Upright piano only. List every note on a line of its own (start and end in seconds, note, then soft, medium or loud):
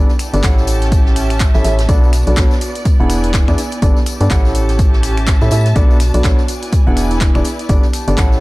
0.34 0.42 B3 medium
0.34 0.42 D4 medium
0.34 0.42 G4 medium
0.34 0.42 A4 medium
0.34 0.42 D5 medium
0.43 1.51 C#4 medium
0.43 1.51 E4 medium
0.43 1.51 G4 medium
0.43 1.51 A4 medium
0.43 1.51 F#5 loud
1.55 1.63 C#4 medium
1.55 1.63 E4 medium
1.55 1.63 G4 medium
1.55 1.63 A4 medium
1.55 1.63 E5 medium
1.64 1.78 C#4 medium
1.64 1.78 E4 medium
1.64 1.78 G4 medium
1.64 1.78 A4 medium
1.64 1.78 E5 medium
1.89 2.08 B3 loud
1.89 2.08 D4 medium
1.89 2.08 F#4 medium
1.89 2.08 A4 medium
1.89 2.08 D5 loud
2.27 2.35 B3 medium
2.27 2.35 D4 medium
2.27 2.35 F#4 medium
2.27 2.35 A4 medium
2.27 2.35 D5 medium
2.37 2.50 B3 medium
2.37 2.50 D4 medium
2.37 2.50 A4 medium
2.37 2.50 C#5 medium
3.00 3.45 B3 medium
3.00 3.45 D4 medium
3.00 3.45 E4 medium
3.00 3.45 G#4 medium
3.00 3.45 F#5 medium
3.48 3.57 B3 medium
3.48 3.57 D4 medium
3.48 3.57 E4 medium
3.48 3.57 G#4 medium
3.48 3.57 D5 medium
3.82 3.96 B3 medium
3.82 3.96 D4 medium
3.82 3.96 G4 medium
3.82 3.96 A4 medium
3.82 3.96 D5 medium
4.21 4.29 B3 medium
4.21 4.29 D4 medium
4.21 4.29 G4 medium
4.21 4.29 A4 medium
4.21 4.29 D5 medium
4.31 5.38 C#4 medium
4.31 5.38 E4 medium
4.31 5.38 G4 medium
4.31 5.38 A4 medium
4.31 5.38 F#5 loud
5.42 5.50 C#4 medium
5.42 5.50 E4 medium
5.42 5.50 G4 medium
5.42 5.50 A4 medium
5.42 5.50 E5 medium
5.52 5.65 C#4 medium
5.52 5.65 E4 medium
5.52 5.65 G4 medium
5.52 5.65 A4 medium
5.52 5.65 E5 medium
5.76 5.95 B3 medium
5.76 5.95 D4 medium
5.76 5.95 F#4 medium
5.76 5.95 A4 medium
5.76 5.95 D5 loud
6.14 6.22 B3 medium
6.14 6.22 D4 medium
6.14 6.22 F#4 medium
6.14 6.22 A4 medium
6.14 6.22 D5 medium
6.24 6.38 B3 medium
6.24 6.38 D4 medium
6.24 6.38 F#4 medium
6.24 6.38 A4 medium
6.24 6.38 C#5 medium
6.87 7.32 B3 medium
6.87 7.32 D4 medium
6.87 7.32 E4 medium
6.87 7.32 G#4 medium
6.87 7.32 F#5 medium
7.35 7.45 B3 medium
7.35 7.45 D4 medium
7.35 7.45 E4 medium
7.35 7.45 G#4 medium
7.35 7.45 D5 medium
7.69 7.83 B3 medium
7.69 7.83 D4 medium
7.69 7.83 G4 medium
7.69 7.83 A4 medium
7.69 7.83 D5 medium
8.08 8.16 B3 medium
8.08 8.16 D4 medium
8.08 8.16 G4 medium
8.08 8.16 A4 medium
8.08 8.16 D5 medium
8.18 8.40 C#4 medium
8.18 8.40 E4 medium
8.18 8.40 G4 medium
8.18 8.40 A4 medium
8.18 8.40 F#5 loud